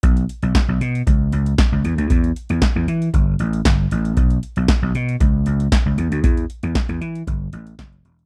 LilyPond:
<<
  \new Staff \with { instrumentName = "Slap bass" } { \clef bass \time 4/4 \key g \lydian \tempo 4 = 116 b,,8 r16 b,,16 r16 b,,16 b,8 cis,8 cis,8 r16 cis,16 e,16 d,16 | e,8 r16 e,16 r16 e,16 e8 g,,8 a,,8 g,,8 a,,8 | b,,8 r16 b,,16 r16 b,,16 b,8 cis,8 cis,8 r16 cis,16 e,16 d,16 | e,8 r16 e,16 r16 e,16 e8 g,,8 a,,8 fis,,8 e,,8 | }
  \new DrumStaff \with { instrumentName = "Drums" } \drummode { \time 4/4 <hh bd>16 hh16 hh16 hh16 <hc hh bd sn>8 hh16 hh16 <hh bd>8 hh16 hh16 <hc hh bd sn>8 hh16 hh16 | <hh bd>16 hh16 hh16 hh16 <hc hh bd sn>8 hh16 hh16 <hh bd>8 hh16 hh16 <hc hh bd sn>8 hh16 hh16 | <hh bd>16 hh16 hh16 hh16 <hc hh bd sn>8 hh16 hh16 <hh bd>8 hh16 hh16 <hc hh bd sn>8 hh16 hh16 | <hh bd>16 hh16 hh16 hh16 <hc hh bd sn>16 hh16 hh16 hh16 <hh bd>8 hh16 hh16 <hc hh bd sn>16 hh16 hh16 hh16 | }
>>